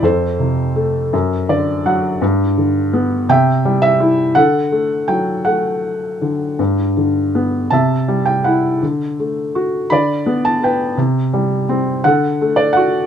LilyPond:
<<
  \new Staff \with { instrumentName = "Felt piano" } { \time 6/8 \key g \major \tempo 4. = 55 << { c''2 d''8 fis''8 | r4. g''8. e''8. | fis''4 g''8 fis''4 r8 | r4. a''8. g''16 fis''8 |
r4. b''8. a''16 g''8 | r4. fis''8. d''16 fis''8 | } \\ { a'2 r4 | r4. e''4. | a'4. r4. | r4. e''4. |
r4. d''4. | r4. a'4. | } >> }
  \new Staff \with { instrumentName = "Felt piano" } { \clef bass \time 6/8 \key g \major f,8 c8 a8 fis,8 d8 fis8 | g,8 d8 b8 c8 g8 e'8 | d8 a8 fis8 a4 d8 | g,8 d8 b8 c8 g8 e'8 |
d8 a8 fis'8 d8 b8 b'8 | c8 g8 c'8 d8 a8 fis'8 | }
>>